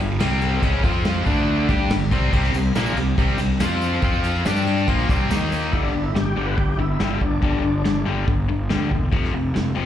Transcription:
0.00 fingered electric bass G1, overdriven electric guitar G2 D3
0.20 fingered electric bass C2, overdriven electric guitar C3 G3 C4, snare, ride
0.41 ride
0.62 fingered electric bass C#2, overdriven electric guitar C#3 G#3 C#4, kick, ride
0.84 fingered electric bass F2, overdriven electric guitar F3 C4 F4, kick, ride
1.05 snare, ride
1.26 fingered electric bass D2, overdriven electric guitar D3 A3 D4, kick, crash
1.68 fingered electric bass G2, overdriven electric guitar G3 D4 G4, kick, snare, ride
1.90 fingered electric bass G1, overdriven electric guitar G2 D3, snare, ride
2.11 fingered electric bass C2, overdriven electric guitar C3 G3 C4, kick, ride
2.33 fingered electric bass C2, overdriven electric guitar C3 G3 C4, kick, ride
2.44 tambourine
2.54 fingered electric bass C2, overdriven electric guitar C3 G3, ride, tambourine
2.65 tambourine
2.75 fingered electric bass A#1, overdriven electric guitar A#2 F3 A#3, snare, ride, tambourine
2.86 tambourine
2.96 fingered electric bass C2, overdriven electric guitar C3 G3, ride
3.17 fingered electric bass C2, overdriven electric guitar C3 G3 C4, kick, ride, tambourine
3.38 fingered electric bass C2, overdriven electric guitar C3 G3, snare, ride, tambourine
3.60 fingered electric bass F2, overdriven electric guitar F3 C4 F4, snare, ride, tambourine
3.81 ride, tambourine
3.93 tambourine
4.02 fingered electric bass F2, overdriven electric guitar F3 C4 F4, kick, ride, tambourine
4.14 tambourine
4.23 ride, tambourine
4.35 tambourine
4.45 fingered electric bass G2, overdriven electric guitar G3 D4 G4, snare, ride, tambourine
4.56 tambourine
4.66 ride
4.78 tambourine
4.88 fingered electric bass A#1, overdriven electric guitar A#2 F3 A#3, kick, ride
5.00 tambourine
5.09 fingered electric bass C2, overdriven electric guitar C3 G3 C4, kick, snare, ride, tambourine
5.30 fingered electric bass D#2, overdriven electric guitar D#3 A#3 D#4, snare, ride, tambourine
5.52 ride, tambourine
5.63 tambourine
5.72 fingered electric bass G1, overdriven electric guitar G2 D3 G3, tonewheel organ E4, kick, open hi-hat
5.83 tonewheel organ D4
5.94 fingered electric bass G1, overdriven electric guitar G2 D3
6.03 tonewheel organ E4
6.15 fingered electric bass G1, overdriven electric guitar G2 D3, tonewheel organ G4, snare, open hi-hat
6.26 tonewheel organ G4
6.36 fingered electric bass G1, overdriven electric guitar G2 D3 G3
6.46 tonewheel organ B4
6.57 fingered electric bass G1, overdriven electric guitar G2 D3, tonewheel organ G4, kick, open hi-hat
6.77 fingered electric bass G1, overdriven electric guitar G2 D3, tonewheel organ E4
6.99 fingered electric bass G1, overdriven electric guitar G2 D3 G3, snare, open hi-hat
7.21 fingered electric bass G1, overdriven electric guitar G2 D3, tonewheel organ D4, kick
7.42 fingered electric bass G1, overdriven electric guitar G2 D3 G3, tonewheel organ D4, kick, open hi-hat
7.64 fingered electric bass G1, overdriven electric guitar G2 D3
7.85 fingered electric bass G1, overdriven electric guitar G2 D3, snare, open hi-hat
8.06 fingered electric bass G1, overdriven electric guitar G2 D3 G3
8.27 fingered electric bass G1, overdriven electric guitar G2 D3, kick, open hi-hat
8.49 fingered electric bass G1, overdriven electric guitar G2 D3
8.70 fingered electric bass D2, overdriven electric guitar G2 D3 G3, snare, open hi-hat
8.91 fingered electric bass E1, overdriven electric guitar G2 D3, kick
9.12 fingered electric bass F1, overdriven electric guitar F2 C3 F3, kick, open hi-hat
9.25 snare
9.33 fingered electric bass F1, overdriven electric guitar F2 C3
9.54 fingered electric bass F1, overdriven electric guitar F2 C3, snare, open hi-hat
9.75 fingered electric bass F1, overdriven electric guitar F2 C3 F3

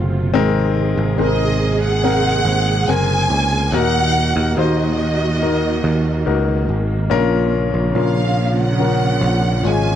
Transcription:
Already playing: picked electric bass F#1, string section C3 A3 F4, nylon-string guitar A3 C4 F4 A4, grand piano C4 F4 A4 C5
0.34 picked electric bass G#1, grand piano G#2 D#3 C4 G#4 A#4, nylon-string guitar G#3, string section A#3 G#4
0.97 picked electric bass G#1
1.18 picked electric bass G#1, grand piano C4 G#4 A#4, nylon-string guitar C4 D#4 A#4, violin section D#5
1.84 violin section F#5
2.03 grand piano C4 G#4 A#4, nylon-string guitar C4 D#4 A#4
2.45 picked electric bass G#1, nylon-string guitar C4
2.88 picked electric bass F#1, grand piano C4 G#4 A#4, violin section G#5
3.30 picked electric bass C#2
3.72 picked electric bass D#2, grand piano A#2 D#4 F#4 A#4, nylon-string guitar D#3, string section D#3 F#4, violin section F#5
4.36 picked electric bass D#2
4.57 picked electric bass D#2, nylon-string guitar D#4 F#4 A#4, grand piano D#4 F#4 C5, violin section D#5
5.41 grand piano D#4 F#4 A#4, nylon-string guitar D#4 F#4 A#4
5.84 picked electric bass D#2, nylon-string guitar F#4
6.26 picked electric bass C#2, grand piano D#4 F#4 A#4
6.69 picked electric bass G#1
7.10 picked electric bass A#1, nylon-string guitar A#2, string section C#3 F3, grand piano C#4 F4 A#4
7.74 picked electric bass A#1
7.94 picked electric bass A#1, grand piano C#4 F4 A#4, nylon-string guitar C#4 F4 A#4
7.98 violin section F5
8.62 violin section F#5
8.79 grand piano F3 C#4 A#4, nylon-string guitar C#4 A#4
9.21 picked electric bass A#1
9.63 picked electric bass G#1, grand piano G#3 C#4 F4
9.68 violin section G#5

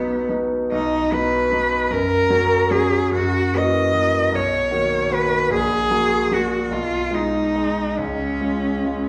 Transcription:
Already playing: grand piano B1 F#3 B3 D#4, cello B3
0.29 grand piano F#3 B3 D#4
0.72 grand piano B1, cello D#4
1.12 grand piano F#3 B3 D#4, cello B4
1.52 grand piano F#3 B3 D#4
1.91 grand piano F#2, cello A#4
2.30 grand piano F#3 C#4 F#4
2.71 grand piano F#3 C#4 F#4, cello G#4
3.12 grand piano F#2, cello F#4
3.54 grand piano E3 A#3 F#4, cello D#5
3.93 grand piano E3 A#3 F#4
4.32 grand piano B1, cello C#5
4.71 grand piano D#3 A#3 F#4
5.10 grand piano D#3 A#3 F#4, cello B4
5.50 grand piano A#1, cello G#4
5.91 grand piano F#3 A#3 F#4
6.31 grand piano F#3 A#3 F#4, cello F#4
6.71 grand piano B1, cello F4
7.11 grand piano G#3 D#4, cello D#4
7.56 grand piano G#3 D#4
7.98 grand piano C#2, cello C#4
8.41 grand piano G#3 F4
8.85 grand piano G#3 F4

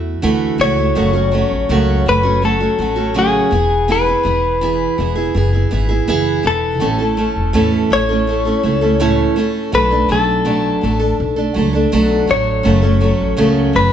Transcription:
Already playing: upright bass E2, steel-string acoustic guitar A3 E4 F#4, clean electric guitar E5
0.22 upright bass D2, steel-string acoustic guitar D3 E3 A3 E4 F#4
0.58 upright bass C#2, steel-string acoustic guitar E3 A3 E4 F#4, clean electric guitar C#5
0.77 steel-string acoustic guitar A3 E4 F#4
0.95 upright bass F#1, steel-string acoustic guitar F#2 C#3 F#3 A3 C#4 F#4
1.13 steel-string acoustic guitar F#3 A3 C#4 F#4
1.32 steel-string acoustic guitar F#3 A3 C#4 F#4
1.51 upright bass A1
1.69 upright bass C#2, steel-string acoustic guitar F#2 C#3 F#3 A3 C#4 F#4
2.06 upright bass F#1, steel-string acoustic guitar F#3 A3 C#4 F#4, clean electric guitar B4
2.23 steel-string acoustic guitar F#3 A3 C#4 F#4
2.42 steel-string acoustic guitar F#3 A3 C#4 F#4, clean electric guitar A4
2.60 steel-string acoustic guitar F#3 A3 C#4 F#4
2.79 upright bass A1, steel-string acoustic guitar F#3 A3 C#4 F#4
2.96 steel-string acoustic guitar F#3 A3 C#4 F#4
3.14 steel-string acoustic guitar F#2 C#3 F#3 A3 C#4 F#4
3.19 clean electric guitar G#4
3.51 upright bass E1, steel-string acoustic guitar E3 B3 E4 G#4
3.88 steel-string acoustic guitar E3 B3 E4 G#4, clean electric guitar B4
4.06 steel-string acoustic guitar B3 E4 G#4
4.23 upright bass E1, steel-string acoustic guitar E3 B3 E4 G#4
4.61 steel-string acoustic guitar E3 B3 E4 G#4
4.98 upright bass E1, steel-string acoustic guitar E3 B3 E4 G#4
5.15 steel-string acoustic guitar B3 E4 G#4
5.35 upright bass F#1, steel-string acoustic guitar E3 B3 E4 G#4
5.53 steel-string acoustic guitar B3 E4 G#4
5.71 upright bass G#1, steel-string acoustic guitar E3 B3 E4 G#4
5.89 steel-string acoustic guitar B3 E4 G#4
6.08 upright bass F#1, steel-string acoustic guitar E3 B3 E4 G#4
6.43 upright bass E1, steel-string acoustic guitar E3 B3 E4
6.47 clean electric guitar A4
6.80 upright bass A1, steel-string acoustic guitar A2 E3 A3 C#4 E4 A4
6.99 steel-string acoustic guitar A3 C#4 E4 A4
7.17 steel-string acoustic guitar A3 C#4 E4 A4
7.36 upright bass E1
7.53 upright bass E2, steel-string acoustic guitar A2 E3 A3 C#4 E4 A4
7.90 upright bass A1, steel-string acoustic guitar A3 C#4 E4 A4, clean electric guitar C#5
8.09 steel-string acoustic guitar A3 C#4 E4 A4
8.27 steel-string acoustic guitar A3 C#4 E4 A4
8.45 steel-string acoustic guitar A3 C#4 E4 A4
8.63 upright bass C#2, steel-string acoustic guitar A3 C#4 E4 A4
8.81 steel-string acoustic guitar A3 C#4 E4 A4
9.00 steel-string acoustic guitar A2 E3 A3 C#4 E4 A4
9.36 steel-string acoustic guitar A3 C#4 E4 A4
9.72 upright bass B1, steel-string acoustic guitar B2 F#3 A3 D4 A4, clean electric guitar B4
9.90 steel-string acoustic guitar A3 D4 A4
10.08 upright bass B1, steel-string acoustic guitar F#3 A3 D4 A4, clean electric guitar A4
10.45 steel-string acoustic guitar B2 F#3 A3 D4 A4
10.81 upright bass A1, steel-string acoustic guitar F#3 A3 D4 A4
10.99 steel-string acoustic guitar A3 D4 A4
11.20 upright bass B1
11.36 steel-string acoustic guitar A3 D4 A4
11.54 upright bass C#2, steel-string acoustic guitar F#3 A3 D4 A4
11.73 steel-string acoustic guitar A3 D4 A4
11.92 upright bass B1, steel-string acoustic guitar B2 F#3 A3 D4 A4
12.27 upright bass A1, steel-string acoustic guitar F#3 A3 D4 A4, clean electric guitar C#5
12.63 upright bass F#1, steel-string acoustic guitar F#2 C#3 F#3 A3 C#4 A4
12.81 steel-string acoustic guitar F#3 A3 C#4 A4
13.00 steel-string acoustic guitar F#3 A3 C#4 A4
13.20 upright bass A1
13.37 upright bass C#2, steel-string acoustic guitar F#2 C#3 F#3 A3 C#4 A4
13.73 upright bass F#1, steel-string acoustic guitar F#3 A3 C#4 A4, clean electric guitar B4

